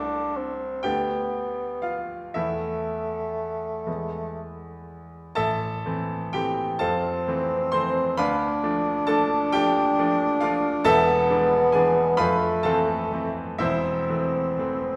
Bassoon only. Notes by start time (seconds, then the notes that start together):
Already playing: D4
0.37 C4
0.85 B3
2.35 A3
6.80 C4
8.19 D4
10.87 B3
12.20 A3
13.61 C4